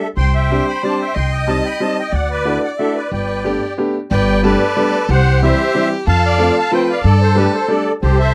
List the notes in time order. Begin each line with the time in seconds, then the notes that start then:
0.17 C2 C5 G5 C6
0.34 E5 G5
0.51 G3 C4 D4 G4
0.68 G5 B5
0.83 G3 C4 D4 G4 D5 A5
1.01 E5 G5
1.14 C2 D#5 G5 C6
1.31 D#5 G5
1.47 G3 C4 D#4 G4 D#5 A5
1.65 G5 B5
1.80 G3 C4 D#4 G4 D#5 A5
1.99 D#5 G5
2.12 D2 D5 F#5
2.30 B4 D5
2.45 A3 D4 E4 F#4
2.63 D5 F#5
2.78 A3 D4 E4 F#4 A4 E5
2.96 B4 D5
3.11 G1 B4 D5 G5
3.44 A3 B3 D4 G4
3.78 A3 B3 D4 G4
4.11 G1 B4 D5 G5
4.43 G3 A3 B3 D4 G4 A4 B4 D5
4.77 G3 A3 B3 D4 G4
5.09 C2 G4 C5 F#5
5.43 E3 G3 C4 E4 G4 C5 E5
5.74 E3 G3 C4 E4 G4
6.06 F2 A4 F5 A5
6.24 D5 F5
6.38 F3 A3 C4 F4 A4
6.58 F5 A5
6.71 F3 A3 C4 F4 A4 B4 C5 G5
6.84 G5
6.89 D5 F5
7.03 G2 A4 D5
7.21 A4 C5
7.35 G3 A3 D4 G4 A4 B4
7.53 A4 C5
7.68 G3 A3 D4 G4 A4 D5
8.02 C2 G4 A4 C5
8.20 C5 E5